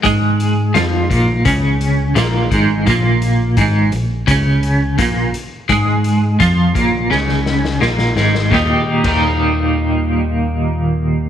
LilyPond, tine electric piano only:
\new Staff \with { instrumentName = "Tine electric piano" } { \clef bass \time 4/4 \key ees \mixolydian \tempo 4 = 85 aes,4 f,8 bes,,8 des,4 bes,,8 aes,,8 | bes,,4 aes,,8 bes,,8 des,4 bes,,8 r8 | aes,4 f,8 bes,,8 des,4 bes,,8 aes,,8 | ees,16 r8 ees,2.~ ees,16 | }